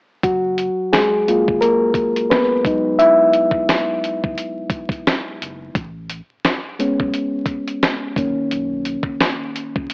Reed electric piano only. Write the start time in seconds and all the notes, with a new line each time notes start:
0.24 F#3 F#4
0.93 G#3 G#4
1.28 G#3 A#3 F4
1.61 A#3 A#4
2.30 B3 B4
2.65 F#3 G#3 D#4
2.99 E4 E5
6.79 G#3 B3 C#4
8.17 D#3 A#3 C#4